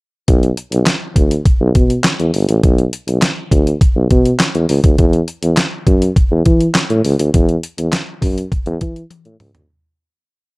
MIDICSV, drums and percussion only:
0, 0, Header, 1, 2, 480
1, 0, Start_track
1, 0, Key_signature, 2, "minor"
1, 0, Tempo, 588235
1, 231, Time_signature, 4, 2, 24, 8
1, 8630, End_track
2, 0, Start_track
2, 0, Title_t, "Drums"
2, 229, Note_on_c, 9, 42, 74
2, 230, Note_on_c, 9, 36, 101
2, 311, Note_off_c, 9, 42, 0
2, 312, Note_off_c, 9, 36, 0
2, 351, Note_on_c, 9, 42, 34
2, 432, Note_off_c, 9, 42, 0
2, 468, Note_on_c, 9, 42, 81
2, 550, Note_off_c, 9, 42, 0
2, 588, Note_on_c, 9, 42, 59
2, 670, Note_off_c, 9, 42, 0
2, 704, Note_on_c, 9, 39, 80
2, 706, Note_on_c, 9, 38, 107
2, 708, Note_on_c, 9, 42, 81
2, 786, Note_off_c, 9, 39, 0
2, 788, Note_off_c, 9, 38, 0
2, 789, Note_off_c, 9, 42, 0
2, 946, Note_on_c, 9, 36, 82
2, 947, Note_on_c, 9, 42, 71
2, 1028, Note_off_c, 9, 36, 0
2, 1028, Note_off_c, 9, 42, 0
2, 1070, Note_on_c, 9, 42, 54
2, 1152, Note_off_c, 9, 42, 0
2, 1187, Note_on_c, 9, 36, 117
2, 1189, Note_on_c, 9, 42, 71
2, 1269, Note_off_c, 9, 36, 0
2, 1271, Note_off_c, 9, 42, 0
2, 1428, Note_on_c, 9, 42, 73
2, 1430, Note_on_c, 9, 36, 89
2, 1510, Note_off_c, 9, 42, 0
2, 1512, Note_off_c, 9, 36, 0
2, 1551, Note_on_c, 9, 42, 43
2, 1633, Note_off_c, 9, 42, 0
2, 1666, Note_on_c, 9, 39, 88
2, 1667, Note_on_c, 9, 38, 110
2, 1670, Note_on_c, 9, 42, 90
2, 1747, Note_off_c, 9, 39, 0
2, 1749, Note_off_c, 9, 38, 0
2, 1752, Note_off_c, 9, 42, 0
2, 1792, Note_on_c, 9, 42, 36
2, 1873, Note_off_c, 9, 42, 0
2, 1908, Note_on_c, 9, 46, 69
2, 1989, Note_off_c, 9, 46, 0
2, 2029, Note_on_c, 9, 42, 59
2, 2111, Note_off_c, 9, 42, 0
2, 2150, Note_on_c, 9, 36, 98
2, 2150, Note_on_c, 9, 42, 81
2, 2231, Note_off_c, 9, 42, 0
2, 2232, Note_off_c, 9, 36, 0
2, 2272, Note_on_c, 9, 42, 35
2, 2354, Note_off_c, 9, 42, 0
2, 2391, Note_on_c, 9, 42, 91
2, 2472, Note_off_c, 9, 42, 0
2, 2511, Note_on_c, 9, 42, 62
2, 2593, Note_off_c, 9, 42, 0
2, 2628, Note_on_c, 9, 39, 82
2, 2629, Note_on_c, 9, 38, 102
2, 2631, Note_on_c, 9, 42, 82
2, 2709, Note_off_c, 9, 39, 0
2, 2711, Note_off_c, 9, 38, 0
2, 2713, Note_off_c, 9, 42, 0
2, 2868, Note_on_c, 9, 36, 81
2, 2872, Note_on_c, 9, 42, 74
2, 2950, Note_off_c, 9, 36, 0
2, 2954, Note_off_c, 9, 42, 0
2, 2995, Note_on_c, 9, 42, 54
2, 3076, Note_off_c, 9, 42, 0
2, 3110, Note_on_c, 9, 36, 123
2, 3113, Note_on_c, 9, 42, 79
2, 3191, Note_off_c, 9, 36, 0
2, 3195, Note_off_c, 9, 42, 0
2, 3350, Note_on_c, 9, 42, 72
2, 3351, Note_on_c, 9, 36, 91
2, 3432, Note_off_c, 9, 42, 0
2, 3433, Note_off_c, 9, 36, 0
2, 3472, Note_on_c, 9, 42, 45
2, 3554, Note_off_c, 9, 42, 0
2, 3587, Note_on_c, 9, 39, 88
2, 3589, Note_on_c, 9, 38, 109
2, 3592, Note_on_c, 9, 42, 76
2, 3669, Note_off_c, 9, 39, 0
2, 3671, Note_off_c, 9, 38, 0
2, 3673, Note_off_c, 9, 42, 0
2, 3711, Note_on_c, 9, 42, 35
2, 3792, Note_off_c, 9, 42, 0
2, 3827, Note_on_c, 9, 46, 67
2, 3909, Note_off_c, 9, 46, 0
2, 3947, Note_on_c, 9, 42, 57
2, 3948, Note_on_c, 9, 36, 101
2, 4029, Note_off_c, 9, 42, 0
2, 4030, Note_off_c, 9, 36, 0
2, 4067, Note_on_c, 9, 42, 80
2, 4069, Note_on_c, 9, 36, 105
2, 4149, Note_off_c, 9, 42, 0
2, 4151, Note_off_c, 9, 36, 0
2, 4188, Note_on_c, 9, 42, 33
2, 4269, Note_off_c, 9, 42, 0
2, 4307, Note_on_c, 9, 42, 79
2, 4389, Note_off_c, 9, 42, 0
2, 4427, Note_on_c, 9, 42, 58
2, 4509, Note_off_c, 9, 42, 0
2, 4545, Note_on_c, 9, 39, 87
2, 4547, Note_on_c, 9, 38, 100
2, 4549, Note_on_c, 9, 42, 83
2, 4627, Note_off_c, 9, 39, 0
2, 4629, Note_off_c, 9, 38, 0
2, 4630, Note_off_c, 9, 42, 0
2, 4787, Note_on_c, 9, 36, 82
2, 4789, Note_on_c, 9, 42, 68
2, 4869, Note_off_c, 9, 36, 0
2, 4871, Note_off_c, 9, 42, 0
2, 4912, Note_on_c, 9, 42, 52
2, 4993, Note_off_c, 9, 42, 0
2, 5029, Note_on_c, 9, 36, 118
2, 5032, Note_on_c, 9, 42, 71
2, 5110, Note_off_c, 9, 36, 0
2, 5114, Note_off_c, 9, 42, 0
2, 5267, Note_on_c, 9, 42, 69
2, 5271, Note_on_c, 9, 36, 86
2, 5349, Note_off_c, 9, 42, 0
2, 5353, Note_off_c, 9, 36, 0
2, 5390, Note_on_c, 9, 42, 44
2, 5472, Note_off_c, 9, 42, 0
2, 5506, Note_on_c, 9, 39, 93
2, 5508, Note_on_c, 9, 38, 108
2, 5510, Note_on_c, 9, 42, 85
2, 5588, Note_off_c, 9, 39, 0
2, 5589, Note_off_c, 9, 38, 0
2, 5592, Note_off_c, 9, 42, 0
2, 5630, Note_on_c, 9, 42, 32
2, 5712, Note_off_c, 9, 42, 0
2, 5749, Note_on_c, 9, 46, 69
2, 5831, Note_off_c, 9, 46, 0
2, 5871, Note_on_c, 9, 42, 59
2, 5952, Note_off_c, 9, 42, 0
2, 5990, Note_on_c, 9, 42, 87
2, 5991, Note_on_c, 9, 36, 99
2, 6071, Note_off_c, 9, 42, 0
2, 6072, Note_off_c, 9, 36, 0
2, 6109, Note_on_c, 9, 42, 33
2, 6191, Note_off_c, 9, 42, 0
2, 6230, Note_on_c, 9, 42, 88
2, 6311, Note_off_c, 9, 42, 0
2, 6350, Note_on_c, 9, 42, 60
2, 6431, Note_off_c, 9, 42, 0
2, 6468, Note_on_c, 9, 39, 83
2, 6469, Note_on_c, 9, 38, 104
2, 6471, Note_on_c, 9, 42, 82
2, 6549, Note_off_c, 9, 39, 0
2, 6551, Note_off_c, 9, 38, 0
2, 6553, Note_off_c, 9, 42, 0
2, 6708, Note_on_c, 9, 36, 82
2, 6710, Note_on_c, 9, 46, 78
2, 6790, Note_off_c, 9, 36, 0
2, 6792, Note_off_c, 9, 46, 0
2, 6835, Note_on_c, 9, 42, 55
2, 6917, Note_off_c, 9, 42, 0
2, 6950, Note_on_c, 9, 36, 118
2, 6954, Note_on_c, 9, 42, 74
2, 7032, Note_off_c, 9, 36, 0
2, 7036, Note_off_c, 9, 42, 0
2, 7067, Note_on_c, 9, 42, 35
2, 7148, Note_off_c, 9, 42, 0
2, 7189, Note_on_c, 9, 42, 81
2, 7192, Note_on_c, 9, 36, 91
2, 7271, Note_off_c, 9, 42, 0
2, 7274, Note_off_c, 9, 36, 0
2, 7313, Note_on_c, 9, 42, 43
2, 7395, Note_off_c, 9, 42, 0
2, 7429, Note_on_c, 9, 48, 53
2, 7431, Note_on_c, 9, 42, 83
2, 7511, Note_off_c, 9, 48, 0
2, 7513, Note_off_c, 9, 42, 0
2, 7549, Note_on_c, 9, 42, 34
2, 7631, Note_off_c, 9, 42, 0
2, 7670, Note_on_c, 9, 46, 64
2, 7671, Note_on_c, 9, 45, 82
2, 7752, Note_off_c, 9, 46, 0
2, 7753, Note_off_c, 9, 45, 0
2, 7790, Note_on_c, 9, 42, 61
2, 7790, Note_on_c, 9, 43, 94
2, 7872, Note_off_c, 9, 42, 0
2, 7872, Note_off_c, 9, 43, 0
2, 8630, End_track
0, 0, End_of_file